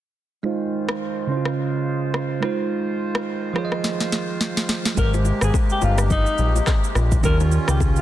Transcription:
0.43 D#3 G#3 D#4 F4 C5
0.89 cross-stick
1.27 C#3 C#4 E4
1.32 C5
1.37 F4
1.45 cross-stick
2.14 cross-stick
2.40 D#3 G#3 D#4 F4, cross-stick
2.45 C5
3.15 cross-stick
3.53 D#3 F3 G#3 F4 G#4, cross-stick
3.58 C#5
3.65 D#5
3.72 cross-stick
3.84 snare
4.00 snare
4.12 snare
4.41 snare
4.57 snare
4.69 snare
4.85 snare
4.95 G#1 C3 G#3 A#3 G4 A#4, kick, low conga, shaker
5.00 B4
5.06 C5
5.14 low bongo, shaker
5.25 low bongo, shaker
5.41 G#1 G#4, cross-stick, shaker
5.54 kick, high bongo, shaker
5.70 G4, shaker
5.82 G1 F4, low bongo, shaker
5.98 cross-stick, shaker
6.10 D#4, kick, low conga, shaker
6.26 shaker
6.38 A#1, low conga, shaker
6.56 low bongo, shaker
6.67 kick, cross-stick, clap, high bongo, shaker
6.84 shaker
6.95 A#1, cross-stick, shaker
7.12 kick, shaker
7.21 D#2 D#3 G3 C#4 F4 A#4, kick, low conga, shaker
7.26 G4
7.40 low bongo, shaker
7.51 low bongo, shaker
7.68 C#2 G4, cross-stick, shaker
7.80 kick, high bongo, shaker
7.96 F4, shaker

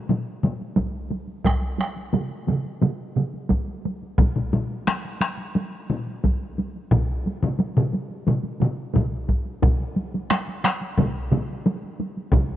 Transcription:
0.09 taiko low-mid, taiko high
0.43 taiko low-mid, taiko high
0.61 taiko high
0.77 taiko, taiko high
0.94 taiko high
1.10 taiko high
1.28 taiko high
1.45 taiko rim, taiko, taiko high
1.62 taiko high
1.79 taiko rim, taiko high
1.96 taiko high
2.13 taiko mid, taiko high
2.30 taiko high
2.47 taiko mid, taiko high
2.65 taiko high
2.82 taiko mid, taiko high
3.17 taiko mid, taiko high
3.34 taiko high
3.50 taiko, taiko high
3.68 taiko high
3.85 taiko high
4.02 taiko high
4.18 taiko, taiko low-mid, taiko high
4.36 taiko low-mid, taiko high
4.53 taiko low-mid, taiko high
4.70 taiko high
4.87 taiko rim, taiko high
5.05 taiko high
5.21 taiko rim, taiko high
5.38 taiko high
5.55 taiko high
5.90 taiko low-mid
6.07 taiko high
6.24 taiko, taiko high
6.41 taiko high
6.58 taiko high
6.76 taiko high
6.91 taiko, taiko low-mid, taiko mid, taiko high
7.10 taiko high
7.26 taiko high
7.43 taiko low-mid, taiko mid, taiko high
7.59 taiko high
7.77 taiko low-mid, taiko mid
7.93 taiko high
8.10 taiko high
8.27 taiko low-mid, taiko mid, taiko high
8.44 taiko high
8.60 taiko low-mid, taiko mid, taiko high
8.94 taiko, taiko low-mid, taiko mid, taiko high
9.11 taiko high
9.28 taiko, taiko high
9.45 taiko high
9.62 taiko, taiko low-mid, taiko mid, taiko high
9.80 taiko high
9.96 taiko high
10.14 taiko high
10.30 taiko rim, taiko high
10.48 taiko high
10.64 taiko rim, taiko high
10.81 taiko high
10.98 taiko, taiko low-mid, taiko mid, taiko high
11.16 taiko high
11.32 taiko low-mid, taiko mid, taiko high
11.50 taiko high
11.66 taiko high
11.83 taiko high
12.00 taiko high
12.17 taiko high
12.32 taiko, taiko low-mid, taiko mid, taiko high
12.50 taiko high

